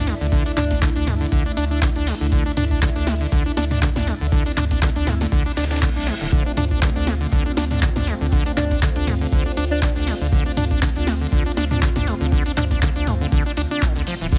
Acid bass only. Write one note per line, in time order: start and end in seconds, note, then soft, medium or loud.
0.07 0.15 G3 medium
0.21 0.27 D3 medium
0.32 0.44 D3 loud
0.46 0.52 D4 medium
0.57 0.65 D4 loud
0.71 0.80 D4 medium
0.82 0.90 D3 loud
0.96 1.08 D4 medium
1.07 1.15 G3 medium
1.21 1.27 D3 medium
1.32 1.44 D3 loud
1.46 1.52 D4 medium
1.57 1.65 D4 loud
1.71 1.80 D4 medium
1.82 1.90 D3 loud
1.96 2.09 D4 medium
2.07 2.15 G3 medium
2.21 2.27 D3 medium
2.32 2.44 D3 loud
2.46 2.52 D4 medium
2.57 2.65 D4 loud
2.71 2.80 D4 medium
2.82 2.90 D3 loud
2.96 3.09 D4 medium
3.07 3.15 G3 medium
3.21 3.27 D3 medium
3.32 3.43 D3 loud
3.46 3.52 D4 medium
3.57 3.65 D4 loud
3.71 3.80 D4 medium
3.82 3.90 D3 loud
3.96 4.09 D4 medium
4.07 4.15 G3 medium
4.21 4.27 D3 medium
4.32 4.44 D3 loud
4.46 4.52 D4 medium
4.57 4.65 D4 loud
4.71 4.80 D4 medium
4.82 4.90 D3 loud
4.96 5.09 D4 medium
5.07 5.15 G3 medium
5.21 5.27 D3 medium
5.32 5.43 D3 loud
5.46 5.52 D4 medium
5.57 5.65 D4 loud
5.71 5.80 D4 medium
5.82 5.90 D3 loud
5.96 6.09 D4 medium
6.07 6.15 G3 medium
6.21 6.27 D3 medium
6.32 6.44 D3 loud
6.46 6.52 D4 medium
6.57 6.65 D4 loud
6.71 6.80 D4 medium
6.82 6.90 D3 loud
6.96 7.09 D4 medium
7.07 7.15 G3 medium
7.21 7.27 D3 medium
7.32 7.43 D3 loud
7.46 7.52 D4 medium
7.57 7.65 D4 loud
7.71 7.80 D4 medium
7.82 7.90 D3 loud
7.96 8.09 D4 medium
8.07 8.15 G3 medium
8.21 8.27 D3 medium
8.32 8.44 D3 loud
8.46 8.52 D4 medium
8.57 8.65 D4 loud
8.71 8.80 D4 medium
8.82 8.90 D3 loud
8.96 9.09 D4 medium
9.07 9.15 G3 medium
9.21 9.27 D3 medium
9.32 9.44 D3 loud
9.46 9.52 D4 medium
9.57 9.65 D4 loud
9.71 9.80 D4 medium
9.82 9.90 D3 loud
9.96 10.09 D4 medium
10.07 10.15 G3 medium
10.21 10.27 D3 medium
10.32 10.44 D3 loud
10.46 10.52 D4 medium
10.57 10.65 D4 loud
10.71 10.80 D4 medium
10.82 10.90 D3 loud
10.96 11.09 D4 medium
11.07 11.15 G3 medium
11.21 11.27 D3 medium
11.32 11.44 D3 loud
11.46 11.52 D4 medium
11.57 11.65 D4 loud
11.71 11.80 D4 medium
11.82 11.90 D3 loud
11.96 12.09 D4 medium
12.07 12.15 G3 medium
12.21 12.27 D3 medium
12.32 12.43 D3 loud
12.46 12.52 D4 medium
12.57 12.65 D4 loud
12.71 12.80 D4 medium
12.82 12.90 D3 loud
12.96 13.09 D4 medium
13.07 13.15 G3 medium
13.21 13.27 D3 medium
13.32 13.44 D3 loud
13.46 13.52 D4 medium
13.57 13.62 D4 loud
13.71 13.84 D4 loud
13.82 13.94 D3 medium
13.96 14.02 D3 medium
14.07 14.15 F3 medium
14.21 14.27 E3 medium
14.32 14.38 D3 loud